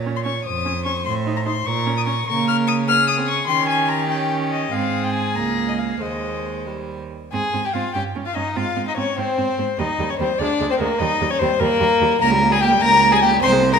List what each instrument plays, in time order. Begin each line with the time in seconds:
Already playing: cello A#2, violin C#5
0.06 viola C#4
0.16 violin C6
0.24 viola C#4, violin C#6
0.45 cello F2, violin C5 D#6
0.65 viola C#4
0.85 viola C#4, violin C#6
1.05 cello A2, violin C6
1.26 viola D#4
1.37 violin A#5
1.46 viola D#4, violin C6
1.66 cello A#2, violin A#4 C#6
1.86 viola C#4
1.97 violin D#6
2.06 viola C#4, violin C#6
2.27 cello C#3, viola A#3, violin A#4 C#6
2.48 violin F6
2.67 violin D#6
2.87 viola A#3, violin G#4 F6
3.08 violin D#6
3.17 viola C4
3.28 violin C#6
3.47 cello D#3, viola C#4, violin G4 C6
3.69 violin G#5
3.89 violin A#5
4.09 viola C#4, violin G5
4.51 violin D#5
4.72 cello G#2, viola C4, violin G#4 F5
5.04 violin G5
5.14 violin G#5
5.36 cello C#2, viola A#3, violin A#5
5.69 violin D#5
5.79 violin F5
6.01 cello D#2, viola G#3, violin C5 D#5
6.67 viola G3
7.32 cello G#2, viola C4, violin G#4 G#5
7.54 cello G#2, viola C4
7.65 violin G4 G5
7.73 cello G#2, viola C4, violin F4 F5
7.94 cello G2, viola C#4, violin G4 G5
8.15 cello G2, viola C#4
8.26 violin F4 F5
8.35 cello G2, viola C#4, violin D#4 D#5
8.56 cello G#2, viola C4, violin F4 F5
8.76 cello G#2, viola C4
8.88 violin D#4 D#5
8.97 cello G#2, viola C4, violin C#4 C#5
9.17 cello G#2, violin C4 C5, viola C4
9.38 cello G#2, viola C4
9.58 cello G#2, viola C4
9.78 cello D#2, viola G3, violin D#4 D#5
9.99 cello D#2, viola G3
10.10 violin C#4 C#5
10.19 cello D#2, viola G3, violin C4 C5
10.39 cello D2, viola G#3, violin D4 D5
10.60 cello D2, viola G#3
10.70 violin C4 C5
10.79 cello D2, viola G#3, violin A#3 A#4
10.99 cello D#2, viola G3, violin D#4 D#5
11.21 cello D#2, viola G3
11.31 violin C#4 C#5
11.39 cello D#2, viola G3, violin C4 C5
11.60 cello D#2, viola G3, violin A#3 A#4
11.80 cello D#2, viola G3
12.01 cello D#2, viola G3
12.21 cello C#2, viola A#3, violin A#4 A#5
12.32 viola G3
12.42 viola A#3
12.51 viola G3, violin G#4 G#5
12.61 viola A#3, violin G4 G5
12.72 viola G3
12.81 cello C#2, viola A#3, violin A#4 A#5
12.92 viola G3
13.02 viola A#3
13.12 viola G3, violin G#4 G#5
13.22 viola A#3, violin G4 G5
13.32 viola G3
13.42 cello C2, viola C4, violin C5 C6
13.52 viola G#3
13.62 viola C4
13.72 viola G#3, violin A#4 A#5